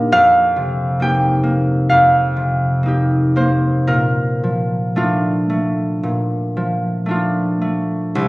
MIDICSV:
0, 0, Header, 1, 2, 480
1, 0, Start_track
1, 0, Key_signature, -2, "major"
1, 0, Tempo, 888889
1, 64, Time_signature, 4, 2, 24, 8
1, 1025, Tempo, 937500
1, 1505, Tempo, 1025641
1, 1985, Tempo, 1073345
1, 3962, End_track
2, 0, Start_track
2, 0, Title_t, "Harp"
2, 0, Program_c, 0, 46
2, 0, Note_on_c, 0, 39, 53
2, 0, Note_on_c, 0, 46, 47
2, 0, Note_on_c, 0, 58, 47
2, 0, Note_on_c, 0, 62, 44
2, 0, Note_on_c, 0, 67, 42
2, 0, Note_on_c, 0, 75, 78
2, 0, Note_on_c, 0, 79, 74
2, 66, Note_on_c, 0, 41, 60
2, 67, Note_on_c, 0, 77, 95
2, 86, Note_off_c, 0, 39, 0
2, 90, Note_off_c, 0, 46, 0
2, 91, Note_off_c, 0, 62, 0
2, 259, Note_off_c, 0, 75, 0
2, 304, Note_on_c, 0, 48, 42
2, 537, Note_off_c, 0, 58, 0
2, 539, Note_off_c, 0, 79, 0
2, 539, Note_on_c, 0, 58, 43
2, 545, Note_off_c, 0, 67, 0
2, 545, Note_on_c, 0, 63, 36
2, 552, Note_on_c, 0, 67, 43
2, 552, Note_on_c, 0, 79, 80
2, 768, Note_off_c, 0, 58, 0
2, 774, Note_on_c, 0, 58, 39
2, 1017, Note_off_c, 0, 77, 0
2, 1023, Note_off_c, 0, 41, 0
2, 1023, Note_on_c, 0, 77, 75
2, 1029, Note_on_c, 0, 41, 45
2, 1258, Note_off_c, 0, 48, 0
2, 1264, Note_on_c, 0, 48, 35
2, 1500, Note_off_c, 0, 58, 0
2, 1502, Note_on_c, 0, 58, 33
2, 1509, Note_off_c, 0, 63, 0
2, 1509, Note_off_c, 0, 67, 0
2, 1515, Note_on_c, 0, 63, 29
2, 1526, Note_on_c, 0, 67, 32
2, 1746, Note_off_c, 0, 58, 0
2, 1750, Note_on_c, 0, 58, 34
2, 1754, Note_on_c, 0, 72, 56
2, 1991, Note_on_c, 0, 70, 59
2, 1994, Note_on_c, 0, 46, 44
2, 2006, Note_off_c, 0, 79, 0
2, 2007, Note_off_c, 0, 41, 0
2, 2007, Note_off_c, 0, 48, 0
2, 2010, Note_off_c, 0, 63, 0
2, 2010, Note_off_c, 0, 67, 0
2, 2012, Note_off_c, 0, 72, 0
2, 2242, Note_on_c, 0, 53, 28
2, 2476, Note_on_c, 0, 57, 31
2, 2479, Note_on_c, 0, 62, 30
2, 2482, Note_on_c, 0, 65, 32
2, 2711, Note_off_c, 0, 57, 0
2, 2716, Note_on_c, 0, 57, 31
2, 2850, Note_off_c, 0, 77, 0
2, 2951, Note_off_c, 0, 46, 0
2, 2957, Note_on_c, 0, 46, 32
2, 3190, Note_off_c, 0, 53, 0
2, 3195, Note_on_c, 0, 53, 26
2, 3413, Note_off_c, 0, 57, 0
2, 3415, Note_on_c, 0, 57, 26
2, 3421, Note_off_c, 0, 62, 0
2, 3421, Note_off_c, 0, 65, 0
2, 3427, Note_on_c, 0, 62, 24
2, 3436, Note_on_c, 0, 65, 31
2, 3504, Note_off_c, 0, 58, 0
2, 3658, Note_off_c, 0, 57, 0
2, 3663, Note_on_c, 0, 57, 28
2, 3735, Note_off_c, 0, 70, 0
2, 3904, Note_on_c, 0, 36, 56
2, 3926, Note_off_c, 0, 46, 0
2, 3926, Note_off_c, 0, 57, 0
2, 3926, Note_off_c, 0, 65, 0
2, 3927, Note_off_c, 0, 53, 0
2, 3962, Note_off_c, 0, 36, 0
2, 3962, Note_off_c, 0, 62, 0
2, 3962, End_track
0, 0, End_of_file